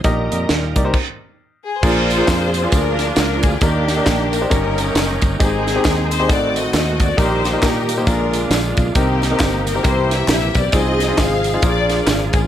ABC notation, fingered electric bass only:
X:1
M:4/4
L:1/8
Q:"Swing" 1/4=135
K:Eb
V:1 name="Fingered electric bass" clef=bass
B,,, F,, E,, C,, z4 | B,,,2 F,,2 D,,2 _D,, =D,, | E,,2 B,,,2 G,,,2 _G,,, =G,,, | A,,,2 E,,2 =A,,,2 E,,2 |
B,,,2 B,,2 B,,,2 B,,, _C,, | C,,2 G,,,2 C,,2 B,,, _C,, | C,,2 A,,,2 B,,,2 A,,, =A,,, |]